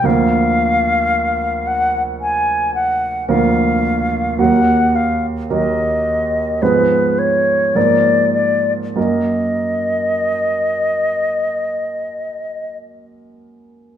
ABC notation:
X:1
M:4/4
L:1/8
Q:1/4=53
K:Ebm
V:1 name="Flute"
f3 g a g f2 | g f e2 c d =d d | e6 z2 |]
V:2 name="Grand piano" clef=bass
[=D,,F,B,B]6 [D,,F,B,B]2 | [E,,G,B,B]2 [E,,G,B,B]2 [A,,F,CA]2 [A,,F,B,B]2 | [G,,G,B,B]8 |]